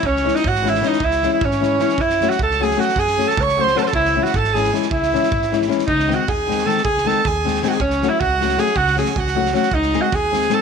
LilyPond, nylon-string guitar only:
\new Staff \with { instrumentName = "Nylon-string guitar" } { \time 5/8 \key cis \minor \tempo 4 = 155 r8 <e gis cis' e'>8 r8 <e gis cis' e'>8 <e gis cis' e'>8 | r8 <e gis cis' e'>8 r8 <e gis cis' e'>8 <e gis cis' e'>8 | r8 <fis a cis' fis'>8 r8 <fis a cis' fis'>8 <fis a cis' fis'>8 | r8 <fis a cis' fis'>8 r8 <fis a cis' fis'>8 <fis a cis' fis'>8 |
r8 <e gis cis' e'>8 r8 <e gis cis' e'>8 <e gis cis' e'>8 | r8 <e gis cis' e'>8 r8 <e gis cis' e'>8 <e gis cis' e'>8 | r8 <dis gis bis dis'>8 r8 <dis gis bis dis'>8 <dis gis bis dis'>8 | r8 <dis gis bis dis'>8 r8 <dis gis bis dis'>8 <dis gis bis dis'>8 |
r8 <fis a cis' fis'>8 r8 <fis a cis' fis'>8 <fis a cis' fis'>8 | r8 <fis a cis' fis'>8 r8 <fis a cis' fis'>8 <fis a cis' fis'>8 | r8 <gis bis dis' gis'>8 r8 <gis bis dis' gis'>8 <gis bis dis' gis'>8 | }